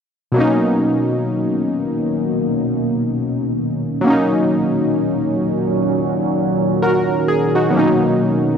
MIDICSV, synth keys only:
0, 0, Header, 1, 2, 480
1, 0, Start_track
1, 0, Key_signature, 5, "major"
1, 0, Tempo, 923077
1, 185, Time_signature, 4, 2, 24, 8
1, 4460, End_track
2, 0, Start_track
2, 0, Title_t, "Synth keys"
2, 0, Program_c, 0, 88
2, 165, Note_on_c, 0, 47, 68
2, 176, Note_on_c, 0, 54, 58
2, 187, Note_on_c, 0, 58, 59
2, 198, Note_on_c, 0, 61, 58
2, 210, Note_on_c, 0, 63, 68
2, 275, Control_c, 0, 64, 127
2, 2074, Note_off_c, 0, 47, 0
2, 2080, Note_off_c, 0, 54, 0
2, 2085, Note_off_c, 0, 58, 0
2, 2086, Note_on_c, 0, 54, 64
2, 2091, Note_off_c, 0, 61, 0
2, 2097, Note_off_c, 0, 63, 0
2, 2101, Note_on_c, 0, 58, 60
2, 2111, Control_c, 0, 64, 0
2, 2116, Note_on_c, 0, 61, 61
2, 2131, Note_on_c, 0, 63, 69
2, 2191, Control_c, 0, 64, 127
2, 3537, Note_off_c, 0, 63, 0
2, 3548, Note_on_c, 0, 70, 61
2, 3552, Note_on_c, 0, 66, 50
2, 3775, Note_off_c, 0, 70, 0
2, 3776, Note_off_c, 0, 66, 0
2, 3787, Note_on_c, 0, 68, 60
2, 3918, Note_off_c, 0, 68, 0
2, 3927, Note_on_c, 0, 66, 62
2, 3930, Note_on_c, 0, 63, 53
2, 3995, Note_off_c, 0, 54, 0
2, 4002, Note_off_c, 0, 58, 0
2, 4005, Note_on_c, 0, 47, 67
2, 4010, Note_off_c, 0, 61, 0
2, 4016, Note_on_c, 0, 54, 61
2, 4028, Note_on_c, 0, 58, 61
2, 4032, Control_c, 0, 64, 0
2, 4039, Note_on_c, 0, 61, 57
2, 4044, Note_off_c, 0, 63, 0
2, 4050, Note_on_c, 0, 63, 72
2, 4111, Control_c, 0, 64, 127
2, 4154, Note_off_c, 0, 66, 0
2, 4460, Note_off_c, 0, 47, 0
2, 4460, Note_off_c, 0, 54, 0
2, 4460, Note_off_c, 0, 58, 0
2, 4460, Note_off_c, 0, 61, 0
2, 4460, Note_off_c, 0, 63, 0
2, 4460, End_track
0, 0, End_of_file